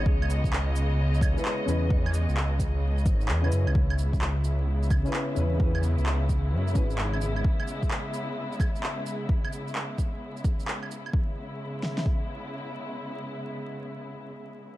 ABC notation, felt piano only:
X:1
M:4/4
L:1/16
Q:"Swing 16ths" 1/4=130
K:C#m
V:1 name="Felt piano"
z8 z3 [C,CEB]3 [C,CEB]2 | z12 z [C,CEB]3 | z8 z3 [C,CEB]3 [C,CEB]2 | [C,CEB]8- [C,CEB]2 [C,CEB] z4 z |
z16 | z16 | z16 | z16 |]